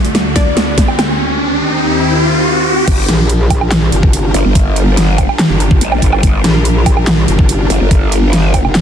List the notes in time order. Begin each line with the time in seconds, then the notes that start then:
Already playing: D2 D3 A3 D4 F#4 D5, riser
0.05 closed hi-hat
0.15 snare, closed hi-hat
0.36 D4 D5, kick, snare, closed hi-hat
0.57 snare, closed hi-hat
0.78 kick, snare, closed hi-hat
0.88 low woodblock
0.99 snare, closed hi-hat, low woodblock
1.20 D#2 D#3 C4 G4
2.88 G1 G3 D4 F4 A#4, kick, closed hi-hat, crash
3.09 A#1, snare, closed hi-hat
3.29 closed hi-hat
3.50 kick, closed hi-hat, low woodblock
3.61 low woodblock
3.71 snare, clap, closed hi-hat
3.92 G1, closed hi-hat
4.03 kick
4.13 closed hi-hat
4.34 G1, closed hi-hat
4.45 G1
4.55 kick, closed hi-hat
4.76 closed hi-hat
4.97 snare, closed hi-hat
5.18 kick, closed hi-hat, low woodblock
5.29 low woodblock
5.39 snare, clap, closed hi-hat
5.50 G1
5.60 closed hi-hat
5.71 kick
5.81 A#1, closed hi-hat
5.92 low woodblock
6.02 G1, kick, closed hi-hat
6.13 low woodblock
6.23 G1, kick, closed hi-hat
6.44 A#1, snare, closed hi-hat
6.65 closed hi-hat
6.86 kick, closed hi-hat, low woodblock
6.97 low woodblock
7.07 snare, clap, closed hi-hat
7.28 G1, closed hi-hat
7.39 kick
7.49 closed hi-hat
7.70 G1, closed hi-hat
7.81 G1
7.91 kick, closed hi-hat
8.12 closed hi-hat
8.33 snare, closed hi-hat
8.54 kick, closed hi-hat, low woodblock
8.65 F1, low woodblock
8.75 snare, clap, closed hi-hat